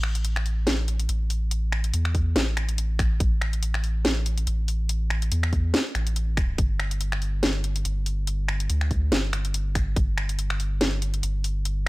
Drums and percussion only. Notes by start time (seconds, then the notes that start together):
0.03 finger snap
0.15 closed hi-hat
0.25 closed hi-hat
0.36 finger snap
0.46 open hi-hat
0.67 snare, closed hi-hat
0.88 closed hi-hat
1.00 closed hi-hat
1.09 closed hi-hat
1.30 open hi-hat
1.51 closed hi-hat
1.72 finger snap
1.84 closed hi-hat
1.94 closed hi-hat
2.05 finger snap
2.15 kick, open hi-hat
2.36 snare, closed hi-hat
2.57 finger snap, closed hi-hat
2.69 closed hi-hat
2.78 closed hi-hat
2.99 finger snap, kick, open hi-hat
3.20 kick, closed hi-hat
3.41 finger snap
3.53 closed hi-hat
3.63 closed hi-hat
3.74 finger snap
3.84 open hi-hat
4.05 snare, closed hi-hat
4.26 closed hi-hat
4.38 closed hi-hat
4.47 closed hi-hat
4.68 open hi-hat
4.89 closed hi-hat
5.10 finger snap
5.22 closed hi-hat
5.32 closed hi-hat
5.43 finger snap
5.53 kick, open hi-hat
5.74 snare, closed hi-hat
5.95 finger snap, closed hi-hat
6.07 closed hi-hat
6.16 closed hi-hat
6.37 finger snap, kick, open hi-hat
6.58 kick, closed hi-hat
6.79 finger snap
6.91 closed hi-hat
7.01 closed hi-hat
7.12 finger snap
7.22 open hi-hat
7.43 snare, closed hi-hat
7.64 closed hi-hat
7.76 closed hi-hat
7.85 closed hi-hat
8.06 open hi-hat
8.27 closed hi-hat
8.48 finger snap
8.60 closed hi-hat
8.70 closed hi-hat
8.81 finger snap
8.91 kick, open hi-hat
9.12 snare, closed hi-hat
9.33 finger snap, closed hi-hat
9.45 closed hi-hat
9.54 closed hi-hat
9.75 finger snap, kick, open hi-hat
9.96 kick, closed hi-hat
10.18 finger snap
10.29 closed hi-hat
10.39 closed hi-hat
10.50 finger snap
10.60 open hi-hat
10.81 snare, closed hi-hat
11.02 closed hi-hat
11.14 closed hi-hat
11.23 closed hi-hat
11.44 open hi-hat
11.65 closed hi-hat